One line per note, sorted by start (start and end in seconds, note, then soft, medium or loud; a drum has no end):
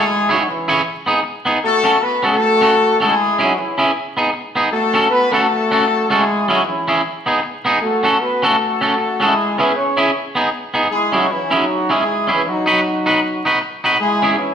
0.00 0.30 G#3 loud
0.00 0.30 E4 medium
0.00 0.30 G#4 loud
0.29 0.34 F#3 medium
0.29 0.34 D#4 medium
0.29 0.42 E4 medium
0.29 0.34 F#4 medium
0.29 0.42 G#4 medium
0.29 0.43 C#5 medium
0.33 0.37 E4 medium
0.37 0.45 F#3 medium
0.37 0.45 D#4 medium
0.37 0.45 F#4 medium
0.48 0.85 E3 medium
0.48 0.85 C#4 medium
0.48 0.85 E4 medium
0.68 0.81 E4 medium
0.68 0.81 G#4 loud
0.68 0.81 C#5 loud
1.06 1.19 B3 medium
1.06 1.20 D#4 medium
1.06 1.20 G#4 medium
1.23 muted clean electric guitar stroke soft
1.45 1.58 B3 medium
1.45 1.58 D#4 medium
1.45 1.59 G#4 medium
1.64 1.99 A3 loud
1.64 1.98 F#4 medium
1.64 1.99 A4 loud
1.84 1.97 C#4 medium
1.84 1.97 F#4 medium
1.84 1.97 A4 loud
2.01 2.24 B3 loud
2.01 2.23 F#4 medium
2.01 2.24 B4 loud
2.23 2.98 A3 loud
2.23 2.35 C#4 medium
2.23 2.36 F#4 medium
2.23 2.97 F#4 medium
2.23 2.36 A4 medium
2.23 2.98 A4 loud
2.61 2.74 C#4 medium
2.61 2.74 F#4 medium
2.61 2.75 A4 medium
3.00 3.40 G#3 loud
3.00 3.13 C#4 medium
3.00 3.40 E4 medium
3.00 3.13 F#4 medium
3.00 3.40 G#4 loud
3.00 3.14 A4 loud
3.39 3.56 F#3 medium
3.39 3.52 C#4 medium
3.39 3.56 D#4 medium
3.39 3.52 E4 medium
3.39 3.56 F#4 medium
3.39 3.52 G#4 medium
3.57 3.95 E3 medium
3.57 3.95 C#4 medium
3.57 3.95 E4 medium
3.78 3.90 C#4 medium
3.78 3.91 E4 loud
3.78 3.91 G#4 loud
4.17 4.29 B3 medium
4.17 4.30 D#4 medium
4.17 4.30 G#4 medium
4.33 muted clean electric guitar stroke soft
4.55 4.68 B3 medium
4.55 4.68 D#4 medium
4.55 4.69 G#4 medium
4.71 5.07 A3 loud
4.71 5.07 F#4 medium
4.71 5.07 A4 loud
4.94 5.07 C#4 medium
4.94 5.07 F#4 medium
4.94 5.07 A4 loud
5.09 5.33 B3 loud
5.09 5.33 F#4 medium
5.09 5.33 B4 loud
5.32 6.10 A3 loud
5.32 5.45 C#4 medium
5.32 5.46 F#4 medium
5.32 6.11 F#4 medium
5.32 6.10 A4 loud
5.32 5.46 A4 medium
5.71 5.84 C#4 medium
5.71 5.84 F#4 medium
5.71 5.85 A4 medium
5.87 muted clean electric guitar stroke soft
6.08 6.48 G#3 medium
6.08 6.23 C#4 medium
6.08 6.50 E4 medium
6.08 6.23 F#4 medium
6.08 6.48 G#4 loud
6.08 6.24 A4 medium
6.48 6.64 F#3 medium
6.48 6.61 C#4 medium
6.48 6.65 D#4 medium
6.48 6.62 E4 medium
6.48 6.64 F#4 loud
6.48 6.62 G#4 medium
6.64 7.01 E3 medium
6.64 7.02 C#4 medium
6.64 7.01 E4 medium
6.88 7.00 C#4 medium
6.88 7.01 E4 medium
6.88 7.01 G#4 loud
7.26 7.39 B3 medium
7.26 7.39 D#4 medium
7.26 7.40 G#4 loud
7.43 muted clean electric guitar stroke soft
7.65 7.78 B3 medium
7.65 7.78 D#4 loud
7.65 7.78 G#4 loud
7.81 8.17 A3 medium
7.81 8.18 F#4 medium
7.81 8.17 A4 loud
8.03 8.16 C#4 medium
8.03 8.17 F#4 medium
8.03 8.17 A4 medium
8.20 8.43 B3 medium
8.20 8.44 F#4 medium
8.20 8.43 B4 medium
8.42 9.21 A3 medium
8.42 8.55 C#4 medium
8.42 8.55 F#4 medium
8.42 9.22 F#4 medium
8.42 9.21 A4 loud
8.42 8.56 A4 medium
8.81 8.94 C#4 medium
8.81 8.94 F#4 medium
8.81 8.95 A4 medium
8.97 muted clean electric guitar stroke soft
9.20 9.59 G#3 loud
9.20 9.33 C#4 medium
9.20 9.60 E4 medium
9.20 9.33 F#4 medium
9.20 9.59 G#4 loud
9.20 9.34 A4 loud
9.58 9.74 B3 medium
9.58 9.71 C#4 loud
9.58 9.72 E4 medium
9.58 9.75 G#4 medium
9.58 9.72 G#4 medium
9.58 9.74 B4 loud
9.76 10.14 C#4 medium
9.76 10.14 G#4 medium
9.76 10.14 C#5 medium
9.97 10.10 C#4 medium
9.97 10.10 E4 loud
9.97 10.10 G#4 loud
10.35 10.48 B3 medium
10.35 10.49 D#4 medium
10.35 10.49 G#4 medium
10.74 10.87 B3 medium
10.74 10.87 D#4 medium
10.74 10.87 G#4 medium
10.90 11.12 G#3 loud
10.90 11.12 E4 medium
10.90 11.12 G#4 loud
11.12 11.29 F#3 medium
11.12 11.25 C#4 medium
11.12 11.29 D#4 medium
11.12 11.26 E4 medium
11.12 11.29 F#4 loud
11.12 11.26 G#4 medium
11.31 11.53 E3 medium
11.31 11.53 C#4 medium
11.31 11.53 E4 medium
11.51 11.92 F#3 medium
11.51 11.64 C#4 medium
11.51 11.92 D#4 medium
11.51 11.64 E4 loud
11.51 11.92 F#4 loud
11.51 11.65 G#4 medium
11.90 12.30 G#3 medium
11.90 12.03 C#4 medium
11.90 12.03 E4 medium
11.90 12.30 E4 medium
11.90 12.03 G#4 medium
11.90 12.30 G#4 loud
12.27 12.46 E3 medium
12.27 12.41 C#4 medium
12.27 12.46 C#4 medium
12.27 12.41 E4 medium
12.27 12.46 E4 medium
12.27 12.42 G#4 medium
12.47 12.69 F#3 loud
12.47 12.69 D#4 medium
12.47 12.69 F#4 loud
12.66 12.79 D#4 medium
12.66 12.80 F#4 medium
12.66 12.80 B4 loud
12.70 13.42 F#3 medium
12.70 13.43 D#4 medium
12.70 13.42 F#4 medium
13.06 13.19 D#4 medium
13.06 13.19 F#4 medium
13.06 13.19 B4 medium
13.45 13.58 D#4 medium
13.45 13.58 F#4 medium
13.45 13.58 B4 medium
13.62 muted clean electric guitar stroke soft
13.84 13.96 D#4 medium
13.84 13.97 F#4 medium
13.84 13.97 B4 loud
13.99 14.35 G#3 loud
13.99 14.36 E4 medium
13.99 14.35 G#4 loud
14.22 14.35 C#4 medium
14.22 14.35 E4 medium
14.22 14.36 G#4 medium
14.37 14.54 E3 medium
14.37 14.54 C#4 medium
14.37 14.54 E4 medium